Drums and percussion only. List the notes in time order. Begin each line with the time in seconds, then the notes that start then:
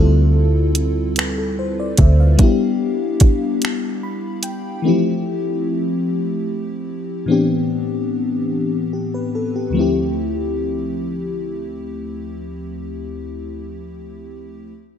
0.75 closed hi-hat
1.16 finger snap, closed hi-hat
1.98 kick, closed hi-hat
2.39 kick, closed hi-hat
3.20 kick, closed hi-hat
3.62 finger snap, closed hi-hat
4.43 closed hi-hat